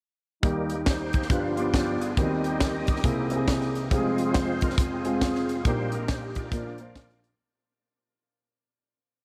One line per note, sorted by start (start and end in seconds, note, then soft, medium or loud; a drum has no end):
0.42 1.26 D#2 medium
0.42 1.29 D#3 medium
0.42 0.75 D#3 soft
0.42 1.26 D#3 soft
0.42 3.01 G3 medium
0.42 1.08 G3 medium
0.42 0.76 G3 soft
0.42 1.29 A#3 medium
0.42 1.08 A#3 medium
0.42 0.76 A#3 medium
0.42 1.29 D#4 medium
0.42 1.08 D#4 medium
0.42 0.87 D#4 medium
0.42 1.08 G4 medium
0.42 0.87 G4 medium
0.42 kick medium
0.42 closed hi-hat medium
0.70 closed hi-hat medium
0.86 1.28 D#4 medium
0.86 1.28 G4 medium
0.86 1.32 C5 medium
0.86 kick medium
0.86 snare medium
0.86 closed hi-hat medium
1.13 kick medium
1.13 closed hi-hat medium
1.22 snare soft
1.29 2.13 G1 medium
1.29 2.13 G2 medium
1.29 1.98 G2 soft
1.29 2.15 F3 medium
1.29 1.98 F3 soft
1.29 1.52 G3 medium
1.29 2.16 B3 soft
1.29 1.52 B3 medium
1.29 1.60 B3 medium
1.29 2.16 D4 medium
1.29 1.52 D4 medium
1.29 1.52 F4 medium
1.29 2.14 F4 medium
1.29 1.43 B4 medium
1.29 kick loud
1.29 closed hi-hat medium
1.33 1.59 D4 medium
1.56 2.02 G3 medium
1.56 2.02 B3 medium
1.56 2.02 D4 medium
1.56 2.02 F4 medium
1.56 2.03 G4 medium
1.56 closed hi-hat medium
1.60 2.15 B3 medium
1.60 2.15 D4 medium
1.74 kick medium
1.74 snare medium
1.74 closed hi-hat medium
2.01 2.16 G#4 medium
2.01 closed hi-hat medium
2.15 3.00 D#2 medium
2.15 3.02 D#3 medium
2.15 3.00 D#3 soft
2.15 3.01 D#3 medium
2.15 3.00 G3 soft
2.15 2.83 G3 medium
2.15 5.61 C4 medium
2.15 3.71 C4 medium
2.15 2.83 C4 soft
2.15 3.02 D#4 medium
2.15 2.83 D#4 medium
2.15 3.01 D#4 medium
2.15 2.24 F#4 medium
2.15 3.71 G4 medium
2.15 3.71 D#5 medium
2.15 kick medium
2.15 closed hi-hat medium
2.23 2.85 G4 medium
2.44 closed hi-hat medium
2.60 kick medium
2.60 snare medium
2.60 closed hi-hat medium
2.87 kick medium
2.87 closed hi-hat medium
2.96 snare soft
3.02 3.87 C2 medium
3.02 3.87 C3 medium
3.02 3.37 C3 soft
3.02 3.89 E3 soft
3.02 3.89 G#3 soft
3.02 3.89 A#3 soft
3.02 3.26 A#3 medium
3.02 3.37 A#3 soft
3.02 3.26 C4 medium
3.02 3.26 E4 medium
3.02 3.26 G#4 medium
3.02 kick loud
3.02 closed hi-hat medium
3.07 3.38 E4 medium
3.30 3.76 A#3 medium
3.30 3.77 C4 medium
3.30 3.76 E4 medium
3.30 3.35 G4 medium
3.30 closed hi-hat medium
3.36 3.79 G#4 medium
3.48 kick medium
3.48 snare loud
3.48 closed hi-hat medium
3.61 snare soft
3.75 closed hi-hat medium
3.91 5.62 F1 medium
3.91 5.62 F2 medium
3.91 4.60 F3 medium
3.91 5.64 F3 medium
3.91 4.61 G#3 soft
3.91 4.57 G#3 medium
3.91 5.64 G#3 medium
3.91 4.61 C4 medium
3.91 4.57 C4 medium
3.91 5.64 F4 medium
3.91 4.57 F4 medium
3.91 4.75 F4 medium
3.91 3.98 G4 medium
3.91 4.36 G#4 medium
3.91 kick medium
3.91 closed hi-hat medium
3.97 4.59 G#4 medium
4.18 closed hi-hat medium
4.34 4.62 C5 medium
4.34 kick medium
4.34 snare medium
4.34 closed hi-hat medium
4.61 4.76 F3 soft
4.61 4.77 G#3 soft
4.61 4.77 C4 soft
4.61 4.79 A#4 medium
4.61 kick medium
4.61 closed hi-hat medium
4.70 snare soft
4.78 5.62 C4 soft
4.78 5.62 F4 soft
4.78 5.46 G#4 medium
4.78 kick loud
4.78 closed hi-hat loud
5.05 5.50 G#3 medium
5.05 5.51 C4 medium
5.05 5.51 F4 medium
5.05 5.50 G#4 medium
5.05 closed hi-hat medium
5.21 kick medium
5.21 snare medium
5.21 closed hi-hat medium
5.35 snare soft
5.49 closed hi-hat medium
5.65 6.49 A#1 medium
5.65 6.52 A#2 medium
5.65 6.49 A#2 medium
5.65 5.98 A#2 soft
5.65 6.52 G3 soft
5.65 5.98 G3 soft
5.65 7.38 A#3 medium
5.65 6.31 A#3 medium
5.65 5.98 A#3 medium
5.65 6.51 D#4 medium
5.65 6.31 D#4 medium
5.65 6.49 D#4 medium
5.65 6.52 G4 medium
5.65 6.31 G4 medium
5.65 6.50 G4 medium
5.65 6.31 A#4 medium
5.65 5.92 C5 medium
5.65 kick medium
5.65 closed hi-hat medium
5.92 6.10 A#4 medium
5.92 closed hi-hat medium
6.08 6.22 C5 medium
6.08 kick medium
6.08 snare medium
6.08 closed hi-hat medium
6.35 7.20 F4 medium
6.35 7.20 A#4 medium
6.35 7.20 D5 medium
6.35 kick medium
6.35 closed hi-hat medium
6.50 7.35 A#1 soft
6.50 7.35 A#2 soft
6.50 7.35 A#2 medium
6.50 7.38 F3 medium
6.50 7.35 F3 soft
6.50 6.74 A#3 medium
6.50 7.37 D4 medium
6.50 6.74 D4 medium
6.50 7.36 D4 soft
6.50 7.37 F4 medium
6.50 6.74 F4 medium
6.50 6.75 A#4 medium
6.50 kick loud
6.50 closed hi-hat loud
6.78 7.25 A#3 medium
6.78 7.25 D4 medium
6.78 7.25 F4 soft
6.78 7.25 C5 medium
6.78 closed hi-hat medium
6.96 kick medium
6.96 snare medium
6.96 closed hi-hat medium
7.10 snare soft
7.24 closed hi-hat medium